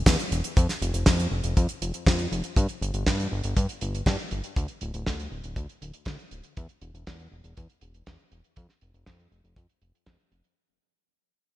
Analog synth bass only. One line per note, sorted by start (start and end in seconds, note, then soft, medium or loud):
0.06 0.17 E2 medium
0.32 0.42 E1 medium
0.57 0.67 F2 loud
0.82 0.92 F1 medium
0.94 1.04 F1 medium
1.07 1.27 F2 loud
1.31 1.42 F1 medium
1.44 1.54 F1 medium
1.57 1.67 F2 medium
1.82 1.92 F1 medium
2.06 2.27 F2 medium
2.32 2.42 F1 medium
2.56 2.67 G2 loud
2.81 2.92 G1 medium
2.94 3.04 G1 loud
3.07 3.27 G2 medium
3.32 3.42 G1 medium
3.44 3.55 G1 medium
3.57 3.67 G2 medium
3.82 4.02 G1 medium
4.06 4.17 G2 loud
4.32 4.42 G1 medium
4.56 4.67 D2 loud
4.82 4.92 D1 loud
4.94 5.04 D1 loud
5.07 5.28 D2 medium
5.32 5.42 D1 medium
5.44 5.55 D1 medium
5.56 5.67 D2 medium
5.82 5.92 D1 medium
6.06 6.17 D2 loud
6.32 6.42 D1 medium
6.57 6.67 E2 loud
6.81 6.92 E1 medium
6.94 7.04 E1 medium
7.07 7.28 E2 medium
7.32 7.42 E1 medium
7.44 7.54 E1 medium
7.58 7.67 E2 medium
7.82 8.02 E1 medium
8.07 8.17 E2 medium
8.32 8.42 E1 medium
8.57 8.67 F2 loud
8.82 8.92 F1 loud
8.94 9.05 F1 loud
9.07 9.28 F2 medium
9.32 9.42 F1 medium
9.44 9.55 F1 medium
9.56 9.67 F2 medium
9.82 9.92 F1 medium
10.07 10.17 F2 medium
10.32 10.42 F1 medium